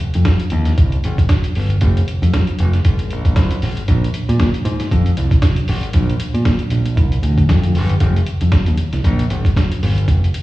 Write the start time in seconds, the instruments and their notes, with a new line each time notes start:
0.00 closed hi-hat
0.14 fingered electric bass F2, closed hi-hat
0.25 kick, snare, closed hi-hat
0.40 closed hi-hat
0.50 fingered electric bass D#2, closed hi-hat
0.65 snare, closed hi-hat
0.78 fingered electric bass C2, kick, closed hi-hat
0.92 closed hi-hat
1.04 fingered electric bass G#1, closed hi-hat
1.18 kick, closed hi-hat
1.29 kick, snare, closed hi-hat
1.44 closed hi-hat
1.55 fingered electric bass G1, open hi-hat
1.70 closed hi-hat
1.81 fingered electric bass F1, kick, closed hi-hat
1.97 closed hi-hat
2.08 closed hi-hat
2.22 fingered electric bass F2, closed hi-hat
2.34 kick, snare, closed hi-hat
2.47 closed hi-hat
2.59 fingered electric bass F1, closed hi-hat
2.73 snare, closed hi-hat
2.85 fingered electric bass G#1, kick, closed hi-hat
2.99 closed hi-hat
3.10 fingered electric bass A#1, closed hi-hat
3.25 kick, closed hi-hat
3.36 fingered electric bass C2, kick, snare, closed hi-hat
3.51 closed hi-hat
3.62 fingered electric bass G#1, open hi-hat
3.77 closed hi-hat
3.88 fingered electric bass A#1, kick, closed hi-hat
4.04 closed hi-hat
4.14 closed hi-hat
4.29 fingered electric bass A#2, closed hi-hat
4.40 kick, snare, closed hi-hat
4.54 closed hi-hat
4.65 fingered electric bass G#2, closed hi-hat
4.80 snare, closed hi-hat
4.91 fingered electric bass F2, kick, closed hi-hat
5.06 closed hi-hat
5.17 fingered electric bass C2, closed hi-hat
5.31 kick, closed hi-hat
5.42 kick, snare, closed hi-hat
5.56 closed hi-hat
5.68 fingered electric bass G#1, open hi-hat
5.83 closed hi-hat
5.93 fingered electric bass A#1, kick, closed hi-hat
6.09 closed hi-hat
6.20 closed hi-hat
6.34 fingered electric bass A#2, closed hi-hat
6.45 kick, snare, closed hi-hat
6.59 closed hi-hat
6.70 fingered electric bass A#1, closed hi-hat
6.85 closed hi-hat
6.97 fingered electric bass C2, kick, closed hi-hat
7.12 closed hi-hat
7.23 fingered electric bass D2, closed hi-hat
7.38 kick, closed hi-hat
7.49 fingered electric bass F2, kick, snare, closed hi-hat
7.63 closed hi-hat
7.74 fingered electric bass G1, open hi-hat
7.89 closed hi-hat
8.00 fingered electric bass F1, kick, closed hi-hat
8.16 closed hi-hat
8.26 closed hi-hat
8.41 fingered electric bass F2, closed hi-hat
8.52 kick, snare, closed hi-hat
8.66 fingered electric bass D#2, closed hi-hat
8.77 closed hi-hat
8.93 fingered electric bass C2, snare, closed hi-hat
9.04 fingered electric bass A#1, kick, closed hi-hat
9.19 closed hi-hat
9.30 fingered electric bass G#1, closed hi-hat
9.45 kick, closed hi-hat
9.57 kick, snare, closed hi-hat
9.72 closed hi-hat
9.83 fingered electric bass G1, open hi-hat
9.98 closed hi-hat
10.08 fingered electric bass F1, kick, closed hi-hat
10.24 closed hi-hat
10.34 closed hi-hat